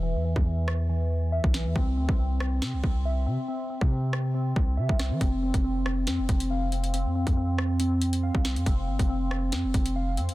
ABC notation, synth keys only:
X:1
M:4/4
L:1/8
Q:1/4=139
K:Flyd
V:1 name="Synth keys"
[E,e] E, E,2 E,2 e E, | C C C2 C2 e C | C C C2 C2 e C | C C C2 C2 f C |
C C C2 C2 f C | C C C2 C2 f C |]